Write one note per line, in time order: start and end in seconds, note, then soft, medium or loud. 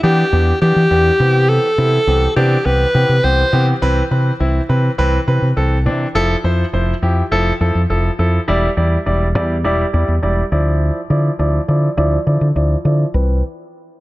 0.03 0.23 E3 loud
0.03 0.22 E3 loud
0.03 0.23 B3 medium
0.03 0.23 D4 medium
0.03 0.58 G4 loud
0.03 0.23 G4 loud
0.32 0.51 E2 loud
0.32 0.52 E3 medium
0.32 0.52 B3 medium
0.32 0.52 D4 medium
0.32 0.52 G4 medium
0.61 0.81 E3 medium
0.61 0.71 E3 loud
0.61 0.81 B3 medium
0.61 0.81 D4 medium
0.61 1.50 G4 loud
0.61 0.81 G4 medium
0.76 0.86 E3 medium
0.91 1.10 E2 loud
0.91 1.10 E3 medium
0.91 1.10 B3 medium
0.91 1.10 D4 medium
0.91 1.10 G4 medium
1.20 1.58 C3 loud
1.20 1.66 E3 medium
1.20 1.66 B3 medium
1.20 1.67 C4 medium
1.20 1.67 G4 medium
1.49 2.36 A4 loud
1.78 1.97 C3 loud
1.78 1.98 E3 medium
1.78 1.98 B3 medium
1.78 1.98 C4 medium
1.78 1.98 E4 medium
2.07 2.26 C2 loud
2.07 2.27 E3 medium
2.07 2.27 B3 medium
2.07 2.27 C4 medium
2.07 2.27 G4 medium
2.36 2.55 C3 loud
2.36 2.56 E3 loud
2.36 2.56 B3 medium
2.36 2.56 C4 medium
2.36 2.56 D4 loud
2.36 2.67 G4 loud
2.65 2.84 C2 loud
2.65 2.85 E3 medium
2.65 2.85 B3 medium
2.65 2.85 C4 medium
2.65 2.85 G4 medium
2.65 3.25 B4 loud
2.94 3.04 C3 loud
2.94 3.14 E3 medium
2.94 3.14 B3 medium
2.94 3.14 C4 medium
2.94 3.14 G4 medium
3.09 3.19 C3 loud
3.23 3.43 C2 loud
3.23 3.43 E3 medium
3.23 3.43 B3 medium
3.23 3.43 C4 medium
3.23 3.43 G4 medium
3.23 3.67 C5 loud
3.53 3.72 C3 loud
3.53 3.72 E3 loud
3.53 3.72 B3 medium
3.53 3.73 C4 medium
3.53 3.73 G4 loud
3.82 4.01 C2 loud
3.82 4.02 E3 loud
3.82 4.02 C4 loud
3.82 4.02 B4 loud
4.11 4.30 C3 medium
4.11 4.31 E3 medium
4.11 4.31 C4 medium
4.11 4.31 B4 loud
4.40 4.59 C2 loud
4.40 4.60 E3 medium
4.40 4.60 C4 medium
4.40 4.60 E4 loud
4.69 4.88 C3 loud
4.69 4.89 E3 medium
4.69 4.89 C4 medium
4.69 4.89 B4 loud
4.98 5.17 C2 loud
4.98 5.18 E3 loud
4.98 5.18 C4 loud
4.98 5.18 B4 loud
5.27 5.37 C3 loud
5.27 5.47 E3 medium
5.27 5.47 C4 medium
5.27 5.47 B4 loud
5.42 5.52 C3 loud
5.56 5.87 C2 loud
5.56 5.76 E3 medium
5.56 5.76 C4 medium
5.56 5.76 A4 loud
5.86 6.05 C3 loud
5.86 6.05 E3 medium
5.86 6.06 C4 medium
5.86 6.06 D4 loud
6.15 6.34 F1 loud
6.15 6.35 F3 loud
6.15 6.35 E4 loud
6.15 6.35 A4 loud
6.44 6.63 F2 loud
6.44 6.64 F3 medium
6.44 6.64 E4 medium
6.44 6.64 C5 loud
6.73 6.92 F1 loud
6.73 6.93 F3 medium
6.73 6.93 E4 medium
6.73 6.93 C5 loud
7.02 7.21 F2 loud
7.02 7.22 F3 medium
7.02 7.22 E4 medium
7.02 7.22 G4 loud
7.31 7.50 F1 loud
7.31 7.51 F3 loud
7.31 7.51 E4 loud
7.31 7.51 A4 loud
7.61 7.70 F2 loud
7.61 7.80 F3 medium
7.61 7.80 E4 medium
7.61 7.80 A4 loud
7.75 7.85 F2 medium
7.90 8.09 F1 loud
7.90 8.09 F3 medium
7.90 8.09 E4 medium
7.90 8.10 A4 loud
8.19 8.38 F2 loud
8.19 8.38 F3 medium
8.19 8.39 E4 medium
8.19 8.39 A4 loud
8.48 8.67 E1 loud
8.48 8.68 G3 loud
8.48 8.68 E4 loud
8.48 8.68 D5 loud
8.77 8.96 E2 loud
8.77 8.97 G3 medium
8.77 8.97 E4 medium
8.77 8.97 D5 loud
9.06 9.35 E1 loud
9.06 9.26 G3 medium
9.06 9.26 E4 medium
9.06 9.26 D5 loud
9.35 9.64 E2 medium
9.35 9.55 G3 medium
9.35 9.55 E4 medium
9.35 9.55 D5 loud
9.64 9.83 E1 loud
9.64 9.84 G3 loud
9.64 9.84 E4 loud
9.64 9.84 D5 loud
9.93 10.03 E2 loud
9.93 10.13 G3 medium
9.93 10.13 E4 medium
9.93 10.13 D5 loud
10.08 10.18 E2 loud
10.23 10.42 E1 loud
10.23 10.42 G3 medium
10.23 10.42 E4 medium
10.23 10.43 D5 loud
10.52 10.90 D2 loud
10.52 10.98 F3 medium
10.52 10.99 E4 medium
10.52 10.99 D5 loud
11.10 11.29 D3 loud
11.10 11.30 F3 medium
11.10 11.30 E4 medium
11.10 11.30 D5 loud
11.39 11.58 D2 loud
11.39 11.59 F3 medium
11.39 11.59 E4 medium
11.39 11.59 D5 loud
11.68 11.87 D3 loud
11.68 11.88 F3 medium
11.68 11.88 E4 medium
11.68 11.88 D5 loud
11.97 12.16 D2 loud
11.97 12.17 F3 loud
11.97 12.17 E4 loud
11.97 12.17 D5 loud
12.26 12.36 D3 loud
12.26 12.46 F3 medium
12.26 12.46 E4 medium
12.26 12.46 D5 loud
12.41 12.51 D3 loud
12.55 12.75 D2 loud
12.55 12.75 F3 medium
12.55 12.75 E4 medium
12.55 12.76 D5 loud
12.85 13.04 D3 loud
12.85 13.04 F3 medium
12.85 13.05 E4 medium
12.85 13.05 D5 loud
13.14 13.41 C2 loud
13.14 13.41 E3 medium
13.14 13.41 C4 medium
13.14 13.41 B4 medium